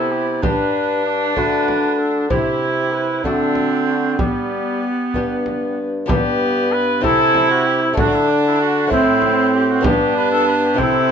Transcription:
Already playing: C3 B3 E4 G4 A4
0.12 G4
0.42 G2 D4 G4 B4, frame drum
1.06 D5
1.36 D3 A3 D4 F#4 B4, frame drum
1.68 frame drum
1.99 A4
2.30 C3 C4 E4 G4, frame drum
2.93 B4
3.24 D3 A3 C4 D4 F#4 A4, frame drum
3.55 frame drum
3.87 F#4
4.18 G3 B3 G4, frame drum
5.14 G2 B3 D4 G4, frame drum
5.46 frame drum
6.06 G2 B3 D4 G4, frame drum
6.10 B3
6.72 B4
7.01 C3 C4 E4 G4 A4, frame drum
7.35 frame drum
7.51 F#4
7.67 G4
7.83 E4
7.93 D3 A3 D4 F#4, frame drum
7.98 D3 D4
8.14 E4
8.29 D4
8.46 E4
8.61 F#4
8.87 A2 A3 C4 E4
8.91 C4 E4, frame drum
9.22 frame drum
9.54 G4
9.70 F#4
9.81 G2 B3 D4 G4, frame drum
9.85 G2 D4 G4
10.16 B4
10.32 A4
10.48 B4
10.63 G4
10.74 C4 E4 G4
10.78 C3 C4 E4 A4, frame drum

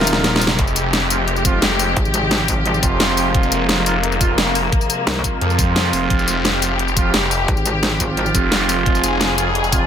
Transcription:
Already playing: D#1 C3 F3 G#3 C4 F4 A#4
0.01 snare
0.07 closed hi-hat, tambourine
0.13 snare
0.24 snare, closed hi-hat
0.33 F3 C4 F4, snare
0.41 open hi-hat, tambourine
0.47 snare
0.59 F1 G4, kick, closed hi-hat
0.67 tambourine
0.76 closed hi-hat, tambourine
0.93 snare, closed hi-hat, tambourine
1.10 F3 C4 F4, closed hi-hat, tambourine
1.28 closed hi-hat
1.36 tambourine
1.45 F3 C4 F4, kick, closed hi-hat, tambourine
1.62 snare, closed hi-hat
1.79 open hi-hat, tambourine
1.97 G#1, kick, closed hi-hat
2.05 tambourine
2.14 closed hi-hat, tambourine
2.31 snare, closed hi-hat, tambourine
2.48 F3 C4 F4, kick, closed hi-hat, tambourine
2.66 closed hi-hat
2.74 tambourine
2.83 F1, kick, closed hi-hat, tambourine
3.00 snare, closed hi-hat
3.17 open hi-hat, tambourine
3.34 F1 A#3, kick, closed hi-hat
3.43 tambourine
3.52 closed hi-hat, tambourine
3.69 snare, closed hi-hat, tambourine
3.86 F3 C4 F4, closed hi-hat, tambourine
4.03 closed hi-hat
4.12 tambourine
4.21 F3 C4 F4, kick, closed hi-hat, tambourine
4.38 snare, closed hi-hat
4.55 open hi-hat, tambourine
4.72 kick, closed hi-hat
4.81 tambourine
4.90 closed hi-hat, tambourine
5.07 C2, snare, closed hi-hat, tambourine
5.24 F3 C4 F4, kick, closed hi-hat, tambourine
5.41 F2, closed hi-hat
5.50 tambourine
5.59 kick, closed hi-hat, tambourine
5.76 snare, closed hi-hat
5.93 F1, open hi-hat, tambourine
6.10 F1 G4, kick, closed hi-hat
6.19 tambourine
6.28 closed hi-hat, tambourine
6.45 snare, closed hi-hat, tambourine
6.62 F3 C4 F4, closed hi-hat, tambourine
6.79 closed hi-hat
6.88 tambourine
6.97 F3 C4 F4, kick, closed hi-hat, tambourine
7.14 snare, closed hi-hat
7.31 open hi-hat, tambourine
7.48 G#1, kick, closed hi-hat
7.57 tambourine
7.66 closed hi-hat, tambourine
7.83 snare, closed hi-hat, tambourine
8.00 F3 C4 F4, kick, closed hi-hat, tambourine
8.17 closed hi-hat
8.26 tambourine
8.35 F1, kick, closed hi-hat, tambourine
8.52 snare, closed hi-hat
8.69 open hi-hat, tambourine
8.86 F1 G#4, kick, closed hi-hat
8.95 tambourine
9.04 closed hi-hat, tambourine
9.21 snare, closed hi-hat, tambourine
9.38 F3 C4 F4, closed hi-hat, tambourine
9.55 closed hi-hat
9.64 tambourine
9.72 F3 C4 F4, kick, closed hi-hat, tambourine

